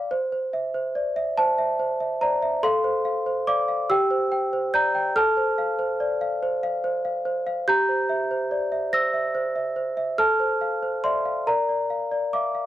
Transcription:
celesta
Already playing: D5 E5 F5 B5 D6
0.11 C5
0.32 C5
0.53 E5
0.74 C5
0.95 D5
1.16 E5
1.38 C5 A5
1.58 E5
1.79 C5
2.00 E5
2.21 C5 D5 A#5
2.42 E5
2.63 A4 F5 C6
2.84 C5
3.05 F5
3.26 C5
3.47 D5 F5 D6
3.68 F5
3.90 G4 G5 E6
4.11 C5
4.32 G5
4.53 C5
4.74 D5 A#5 G6
4.95 G5
5.16 A4 A5 F6
5.37 C5
5.58 F5
5.79 C5
6.00 D5
6.21 F5
6.43 C5
6.63 F5
6.84 C5
7.05 F5
7.25 C5
7.47 F5
7.68 G4 A#5 G6
7.89 C5
8.09 E5
8.31 C5
8.51 D5
8.72 E5
8.93 C5 E6 A#6
9.14 E5
9.35 C5
9.56 E5
9.76 C5
9.97 E5
10.18 A4 A5 F6
10.40 C5
10.61 F5
10.83 C5
11.04 D5 E5 C6
11.25 F5
11.47 A#4 D5 A#5
11.69 D5
11.90 F5
12.12 D5
12.33 E5 F5 D6
12.55 F5

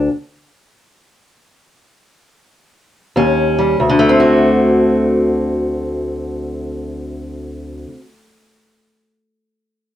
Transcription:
steel-string acoustic guitar
3.16 D#2 C#4
3.59 G3
3.80 D2
3.90 D3
3.99 A3
4.09 C4
4.20 F#4

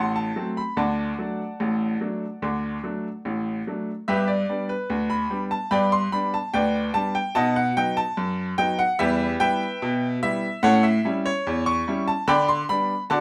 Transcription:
grand piano
Already playing: A1 A2 F#5 A5 C6
0.16 A5
0.36 F#3 A3 C4
0.57 B5
0.77 D2 D3 D5 F#5 A5
1.19 F#3 A3 D4
1.60 A1 A2
2.01 F#3 A3 D4
2.42 D2 D3
2.84 F#3 A3 D4
3.25 A1 A2
3.67 F#3 A3 D4
4.08 G2 B3 G4 B4 E5
4.28 D5
4.49 G3 B3 D4
4.69 B4
4.90 D2
5.10 B5
5.30 G3 B3 D4
5.51 A5
5.71 G2 B3 D5 G5 B5
5.92 C6
6.12 G3 B3 D4 B5
6.34 A5
6.54 D2 B4 D5 G5
6.94 G3 B3 D4 A5
7.15 G5
7.35 B2 D#4 D#5 F#5 A5
7.56 F#5
7.77 F#3 B3 D#4 G5
7.97 A5
8.17 F#2
8.58 F#3 B3 D#4 G5
8.79 F#5
8.99 E2 G3 G4 B4 E5
9.40 G3 B3 E4 B4 E5 G5
9.82 B2
10.23 G3 B3 E4 E5
10.63 A2 C#4 A4 C#5 F#5
10.83 E5
11.05 G3 C#4 E4
11.26 C#5
11.47 E2
11.66 C#6
11.87 G3 C#4 E4
12.08 A5
12.28 D3 D5 G5 B5
12.49 C6
12.69 G3 B3 D4 B5
13.10 D3 F#4 D5 F#5 A5

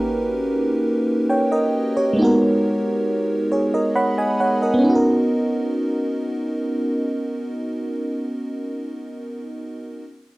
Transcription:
fm electric piano
Already playing: A#3 C#4 D#4 F#4 G4 A#4 B4
1.30 C#5 G5
1.52 A#4 D#5
1.97 G4 C#5
2.13 G#3 A#3
2.19 B3 D#4 F#4
2.24 A#4
3.52 G#4 C#5
3.74 A#4 D#5
3.95 C#5 F#5 B5
4.18 D#5 G#5
4.40 C#5 F#5
4.62 A#4 D#5
4.74 B3
4.79 C#4
4.84 D#4
4.90 F#4
4.95 A#4

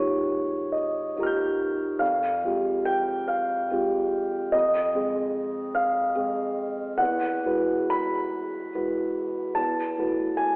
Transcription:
grand piano
Already playing: G#2 D#3 A#3 F4 G4 C#5
0.72 D#5
1.16 D#3 A#3 F4 G4 D#5 A#5
1.23 F6 G6
1.99 F2 F5
2.44 G#3 C4 F4 G4
2.85 G5
3.28 F5
3.71 G#3 C4 F4 G4
4.52 F2 D#5
4.95 G#3 C4 G#4
5.75 F5
6.15 G#3 C4 G#4
6.98 E2 F#5
7.45 G#3 E4 F#4 B4
7.90 B5
8.74 G#3 E4 F#4 B4
9.55 E2 A5
9.98 A3 E4 F#4 B4
10.37 G#5

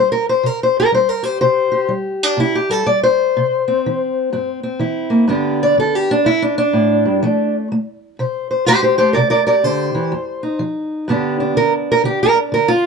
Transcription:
steel-string acoustic guitar
Already playing: G3 C5
0.12 A#4
0.29 C5
0.43 C3 A#4
0.63 C5
0.80 A#4
0.92 G3 C5
1.09 A#4
1.23 G4 C5
1.41 C3 C5
1.72 G4
1.88 G3
2.23 D4
2.37 C3 E4
2.55 G4
2.69 G3 A4
2.86 G3 D5
3.03 C5
3.37 C3
3.68 C4
3.86 E3
4.33 G2 C4
4.63 C4
4.79 E3 E4
5.10 A#3
5.28 G2 D3 B3 D4 G4
5.63 D5
5.78 D3 A4
5.95 G4
6.11 D4
6.25 G2 E4
6.42 D4
6.58 D4
6.73 A2
7.05 G2
7.23 F3 A3
7.72 A3
8.19 C3 C5
8.51 C5
8.66 A3 G4 C5
8.83 G4 C5
8.98 A3 G4 C5
9.13 C3 A#4 D5
9.30 A#4 D5
9.47 G4 A#4 D5
9.64 D3 C5
9.95 E3
10.12 F2
10.43 D#4
10.59 F3
11.08 G2 D3 B3 D4 G4
11.40 D4
11.57 D3 A#4
11.92 A#4
12.04 D3 G4
12.23 A#4
12.33 D4
12.52 D3 A#4
12.68 F4

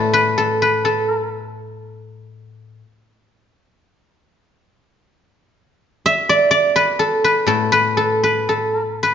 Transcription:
guzheng
Already playing: A2 E3 E4 A4 B4 D5 E5
0.13 B4
0.38 A4
0.62 B4
0.85 A4
6.06 E5
6.29 D5
6.51 D5
6.76 B4
6.99 A4
7.24 B4
7.47 A2 A4
7.72 B4
7.97 A4
8.23 B4
8.49 A4
9.03 B4

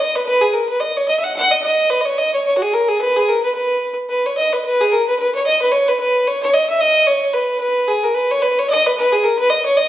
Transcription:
fiddle
0.00 D#5
0.15 B4
0.26 B4
0.41 G#4
0.53 A#4
0.69 B4
0.80 D#5
0.97 C#5
1.08 D#5
1.19 E5
1.24 F#5
1.36 F#5
1.51 D#5
1.62 D#5
1.90 B4
2.01 D#5
2.05 C#5
2.18 D#5
2.34 C#5
2.46 C#5
2.57 F#4
2.62 G#4
2.73 A#4
2.88 G#4
3.01 B4
3.16 G#4
3.28 A#4
3.44 B4
3.54 B4
4.09 B4
4.26 C#5
4.37 D#5
4.53 B4
4.65 B4
4.81 G#4
4.92 A#4
5.08 B4
5.19 B4
5.35 C#5
5.46 D#5
5.61 B4
5.72 C#5
5.88 B4
6.00 B4
6.27 C#5
6.43 C#5
6.53 D#5
6.70 E5
6.81 D#5
7.07 C#5
7.33 B4
7.60 B4
7.88 G#4
8.03 A#4
8.14 B4
8.31 C#5
8.42 B4
8.59 C#5
8.70 D#5
8.86 B4
8.97 B4
9.13 G#4
9.24 A#4
9.39 B4
9.50 D#5
9.65 C#5
9.77 D#5

